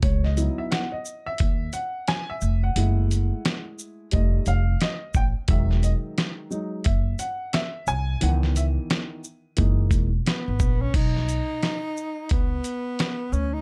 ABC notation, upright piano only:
X:1
M:4/4
L:1/16
Q:"Swing 16ths" 1/4=88
K:B
V:1 name="Upright piano"
c d2 e f d2 e3 f2 g e2 f- | f4- f z3 _e2 =f2 e2 =g2 | e2 d2 z4 e2 f2 e2 g2 | f2 e2 z12 |
z16 |]
V:2 name="Upright piano" clef=bass
z2 [F,B,DE]2 z12 | [G,=A,E]8 [=G,A,_E]2 z6 | [D,F,G,]6 [F,G,D]2 z8 | [D,E,B,]6 z2 [E,G,A,D]2 z6 |
z16 |]